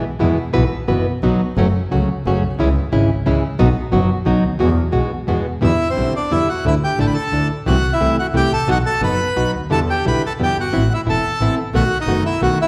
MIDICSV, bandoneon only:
0, 0, Header, 1, 2, 480
1, 0, Start_track
1, 0, Key_signature, 4, "major"
1, 0, Tempo, 339175
1, 774, Time_signature, 3, 2, 24, 8
1, 7975, Key_signature, 1, "minor"
1, 17940, End_track
2, 0, Start_track
2, 0, Title_t, "Bandoneon"
2, 0, Program_c, 0, 23
2, 7979, Note_on_c, 0, 76, 75
2, 8006, Note_on_c, 0, 64, 58
2, 8329, Note_off_c, 0, 64, 0
2, 8347, Note_on_c, 0, 72, 65
2, 8350, Note_off_c, 0, 76, 0
2, 8364, Note_on_c, 0, 60, 54
2, 8678, Note_off_c, 0, 72, 0
2, 8687, Note_off_c, 0, 60, 0
2, 8720, Note_on_c, 0, 74, 64
2, 8731, Note_on_c, 0, 62, 45
2, 8938, Note_on_c, 0, 76, 77
2, 8939, Note_off_c, 0, 62, 0
2, 8944, Note_on_c, 0, 64, 58
2, 8957, Note_off_c, 0, 74, 0
2, 9165, Note_off_c, 0, 64, 0
2, 9186, Note_off_c, 0, 76, 0
2, 9187, Note_on_c, 0, 78, 63
2, 9197, Note_on_c, 0, 66, 49
2, 9407, Note_off_c, 0, 78, 0
2, 9412, Note_off_c, 0, 66, 0
2, 9440, Note_on_c, 0, 64, 57
2, 9444, Note_on_c, 0, 76, 80
2, 9543, Note_off_c, 0, 64, 0
2, 9547, Note_off_c, 0, 76, 0
2, 9677, Note_on_c, 0, 79, 76
2, 9685, Note_on_c, 0, 67, 61
2, 9891, Note_off_c, 0, 79, 0
2, 9895, Note_off_c, 0, 67, 0
2, 9907, Note_on_c, 0, 81, 70
2, 9919, Note_on_c, 0, 69, 57
2, 9994, Note_off_c, 0, 81, 0
2, 10001, Note_off_c, 0, 69, 0
2, 10005, Note_on_c, 0, 83, 59
2, 10099, Note_off_c, 0, 83, 0
2, 10102, Note_on_c, 0, 81, 77
2, 10114, Note_on_c, 0, 69, 57
2, 10580, Note_off_c, 0, 81, 0
2, 10587, Note_off_c, 0, 69, 0
2, 10860, Note_on_c, 0, 78, 87
2, 10864, Note_on_c, 0, 66, 65
2, 11192, Note_off_c, 0, 66, 0
2, 11221, Note_on_c, 0, 76, 77
2, 11225, Note_off_c, 0, 78, 0
2, 11234, Note_on_c, 0, 64, 58
2, 11549, Note_off_c, 0, 76, 0
2, 11556, Note_off_c, 0, 64, 0
2, 11596, Note_on_c, 0, 78, 73
2, 11610, Note_on_c, 0, 66, 62
2, 11696, Note_off_c, 0, 78, 0
2, 11708, Note_off_c, 0, 66, 0
2, 11839, Note_on_c, 0, 79, 92
2, 11841, Note_on_c, 0, 67, 70
2, 12046, Note_off_c, 0, 67, 0
2, 12067, Note_off_c, 0, 79, 0
2, 12074, Note_on_c, 0, 69, 61
2, 12079, Note_on_c, 0, 81, 82
2, 12283, Note_off_c, 0, 69, 0
2, 12308, Note_off_c, 0, 81, 0
2, 12326, Note_on_c, 0, 78, 88
2, 12330, Note_on_c, 0, 66, 70
2, 12425, Note_off_c, 0, 78, 0
2, 12428, Note_off_c, 0, 66, 0
2, 12539, Note_on_c, 0, 81, 87
2, 12541, Note_on_c, 0, 69, 66
2, 12757, Note_off_c, 0, 81, 0
2, 12758, Note_off_c, 0, 69, 0
2, 12786, Note_on_c, 0, 71, 62
2, 12793, Note_on_c, 0, 83, 85
2, 13459, Note_off_c, 0, 71, 0
2, 13463, Note_off_c, 0, 83, 0
2, 13753, Note_on_c, 0, 81, 88
2, 13766, Note_on_c, 0, 69, 63
2, 13860, Note_off_c, 0, 81, 0
2, 13870, Note_off_c, 0, 69, 0
2, 14010, Note_on_c, 0, 79, 75
2, 14023, Note_on_c, 0, 67, 61
2, 14223, Note_off_c, 0, 79, 0
2, 14230, Note_off_c, 0, 67, 0
2, 14255, Note_on_c, 0, 71, 63
2, 14260, Note_on_c, 0, 83, 72
2, 14466, Note_off_c, 0, 71, 0
2, 14469, Note_off_c, 0, 83, 0
2, 14522, Note_on_c, 0, 81, 73
2, 14523, Note_on_c, 0, 69, 55
2, 14618, Note_off_c, 0, 81, 0
2, 14619, Note_off_c, 0, 69, 0
2, 14764, Note_on_c, 0, 79, 83
2, 14777, Note_on_c, 0, 67, 64
2, 14961, Note_off_c, 0, 79, 0
2, 14968, Note_off_c, 0, 67, 0
2, 15005, Note_on_c, 0, 66, 61
2, 15009, Note_on_c, 0, 78, 76
2, 15421, Note_off_c, 0, 66, 0
2, 15468, Note_off_c, 0, 78, 0
2, 15479, Note_on_c, 0, 76, 69
2, 15495, Note_on_c, 0, 64, 60
2, 15574, Note_off_c, 0, 76, 0
2, 15586, Note_off_c, 0, 64, 0
2, 15699, Note_on_c, 0, 81, 82
2, 15700, Note_on_c, 0, 69, 58
2, 16344, Note_off_c, 0, 81, 0
2, 16345, Note_off_c, 0, 69, 0
2, 16637, Note_on_c, 0, 78, 86
2, 16638, Note_on_c, 0, 66, 66
2, 16957, Note_off_c, 0, 78, 0
2, 16958, Note_off_c, 0, 66, 0
2, 16990, Note_on_c, 0, 63, 62
2, 16998, Note_on_c, 0, 75, 82
2, 17315, Note_off_c, 0, 63, 0
2, 17319, Note_off_c, 0, 75, 0
2, 17343, Note_on_c, 0, 64, 57
2, 17352, Note_on_c, 0, 76, 76
2, 17561, Note_off_c, 0, 64, 0
2, 17566, Note_off_c, 0, 76, 0
2, 17594, Note_on_c, 0, 66, 62
2, 17598, Note_on_c, 0, 78, 81
2, 17808, Note_off_c, 0, 66, 0
2, 17810, Note_off_c, 0, 78, 0
2, 17853, Note_on_c, 0, 76, 69
2, 17857, Note_on_c, 0, 64, 57
2, 17940, Note_off_c, 0, 64, 0
2, 17940, Note_off_c, 0, 76, 0
2, 17940, End_track
0, 0, End_of_file